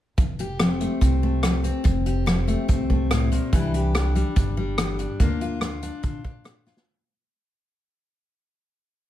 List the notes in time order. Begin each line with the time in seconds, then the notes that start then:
0.18 F1 F2, kick, closed hi-hat
0.39 G4, closed hi-hat
0.60 F3 C4, cross-stick, closed hi-hat
0.80 A3, closed hi-hat
1.01 C2 C3 C4, kick, closed hi-hat
1.23 A3
1.43 F3, cross-stick, closed hi-hat
1.64 C4, closed hi-hat
1.84 F1 F2, kick, closed hi-hat
2.06 G4, closed hi-hat
2.26 F3 C4, cross-stick, closed hi-hat
2.48 A3, closed hi-hat
2.68 C2 C3 C4, kick, closed hi-hat
2.90 A3, kick
3.11 A2, cross-stick, closed hi-hat
3.32 A#2, closed hi-hat
3.53 C2 C3 E3 G3 D4 E4, kick, closed hi-hat
3.74 G4, closed hi-hat
3.94 E3 D4, cross-stick, closed hi-hat
4.15 G3, closed hi-hat
4.36 G1 G2 D4, kick, closed hi-hat
4.57 G3
4.78 E3, cross-stick, closed hi-hat
4.99 D4, closed hi-hat
5.20 D2 D3 A#3 D4 F4, kick, closed hi-hat
5.41 F4, closed hi-hat
5.61 A#3 F4, cross-stick, closed hi-hat
5.82 D4, closed hi-hat
6.03 A#2 D3 F4, kick, closed hi-hat
6.24 D4, kick
6.44 A#3, cross-stick, closed hi-hat
6.66 F4, snare
6.77 snare